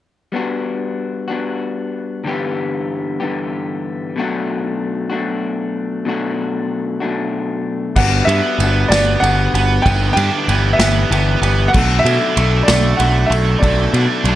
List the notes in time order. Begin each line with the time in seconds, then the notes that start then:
0.32 G3 B3 D4
0.36 F#4
1.28 B3 D4 F#4
1.32 G3
2.24 G2 D3 E3 G3 B3 G4
3.20 G2 D3 E3 G3 B3 G4
4.16 B2 F#3 A3 D4 F#4
5.10 B2 F#3 A3 D4 F#4
6.05 B2 F#3 A3 D4 F#4
7.00 B2 F#3 A3 D4 F#4
7.95 G1 G3 B3 D4 F#4 F#5 B5 D6, kick, crash
8.25 G2 B3 F#4 E5, ride
8.30 B3 D4
8.59 G1 G3 B3 D4, ride
8.63 F#4
8.88 G1 F#4 D5, snare, ride
8.93 B3 D4
9.20 G1 G3 B3 F#5, ride
9.25 D4 F#4
9.54 G1 B3 D4 F#4, ride
9.82 G1 G2 D3 E3 E5 G5, kick, ride
9.87 G3 B3 G4
10.13 G2 G4 G5
10.17 E3 G3 B3 D4, ride
10.47 G1 E3 G3 B3 G4, ride
10.73 E5
10.79 G1 E3 G3 B3 G4, snare, ride
11.10 G1 E3 G3 B3 G4, ride
11.42 G1 E3 G3 B3 G4, ride
11.68 F#5
11.73 B1 B2 F#3 A3 D4 A4, kick, crash
11.99 E5
12.05 B2 A3 D4 A4, ride
12.36 B1 F#3 A3 D4 A4, ride
12.63 A4 D5
12.68 B1 A3 D4, snare, ride
12.97 B1 F#3 A3 F#5, ride
13.01 D4 A4
13.26 A4 E5
13.30 B1 A3 D4, ride
13.59 B1 B2 F#3 A3 D5 A5, kick
13.63 D4 A4, ride
13.91 B2 A3 D4 A4, ride
14.24 B1 F#3 A3 D4 A4, ride